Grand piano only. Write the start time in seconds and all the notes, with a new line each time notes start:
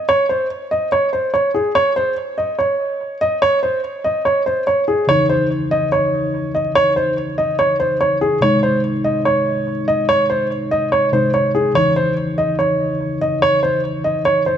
0.09 C#5
0.29 C5
0.71 D#5
0.92 C#5
1.13 C5
1.34 C#5
1.54 G#4
1.75 C#5
1.96 C5
2.38 D#5
2.59 C#5
3.21 D#5
3.42 C#5
3.63 C5
4.04 D#5
4.25 C#5
4.46 C5
4.67 C#5
4.88 G#4
5.09 C#5
5.29 C5
5.71 D#5
5.92 C#5
6.55 D#5
6.75 C#5
6.96 C5
7.38 D#5
7.59 C#5
7.80 C5
8.01 C#5
8.21 G#4
8.42 C#5
8.63 C5
9.04 D#5
9.25 C#5
9.88 D#5
10.09 C#5
10.30 C5
10.71 D#5
10.92 C#5
11.13 C5
11.34 C#5
11.55 G#4
11.75 C#5
11.96 C5
12.38 D#5
12.59 C#5
13.21 D#5
13.42 C#5
13.63 C5
14.04 D#5
14.25 C#5
14.46 C5